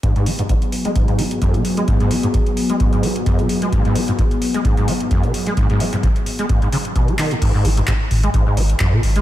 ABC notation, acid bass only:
X:1
M:4/4
L:1/16
Q:"Swing 16ths" 1/4=130
K:G#m
V:1 name="Acid bass" clef=bass
G,, G,, G, G,, G,, z2 G, G,, G,, G, z F,, B,, z G, | G,, G,, G, G,, G,, z2 G, G,, G,, G, z F,, B,, z G, | G,, G,, G, G,, G,, z2 G, G,, G,, G, z F,, B,, z G, | G,, G,, G, G,, G,, z2 G, G,, G,, C, z B,, G, D, G,, |
G,, G,, G, G,, G,, z2 G, G,, G,, G, z F,, B,, z G, |]